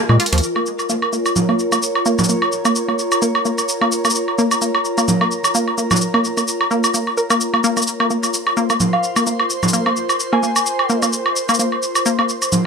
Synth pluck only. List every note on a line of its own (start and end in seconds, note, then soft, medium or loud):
0.09 0.14 G#3 medium
0.20 0.26 F4 medium
0.33 0.38 F3 loud
0.56 0.61 A#3 medium
0.90 0.99 A#3 medium
1.13 1.19 A#3 medium
1.49 1.56 A#3 medium
1.72 1.77 A#3 medium
2.06 2.15 A#3 loud
2.29 2.35 A#3 medium
2.65 2.73 A#3 loud
2.88 2.93 A#3 medium
3.22 3.31 A#3 loud
3.45 3.52 A#3 medium
3.81 3.89 A#3 medium
4.05 4.10 A#3 medium
4.38 4.48 A#3 loud
4.62 4.68 A#3 medium
4.98 5.05 A#3 loud
5.21 5.26 A#3 medium
5.55 5.64 A#3 medium
5.78 5.84 A#3 medium
6.14 6.21 A#3 loud
6.37 6.42 A#3 medium
6.71 6.80 A#3 loud
6.94 7.00 A#3 medium
7.17 7.27 A#4 medium
7.30 7.35 A#3 loud
7.54 7.57 A#3 medium
7.64 7.70 A#3 loud
7.77 7.84 A#3 medium
8.00 8.08 A#3 loud
8.10 8.17 A#3 medium
8.57 8.66 A#3 loud
8.70 8.75 A#3 medium
9.16 9.24 A#3 loud
9.27 9.33 A#3 medium
9.73 9.83 A#3 medium
9.86 9.91 A#3 medium
10.33 10.40 A#3 loud
10.43 10.49 A#3 medium
10.90 10.99 A#3 medium
11.02 11.07 A#3 medium
11.49 11.56 A#3 loud
11.59 11.65 A#3 medium
12.06 12.15 A#3 medium
12.19 12.24 A#3 medium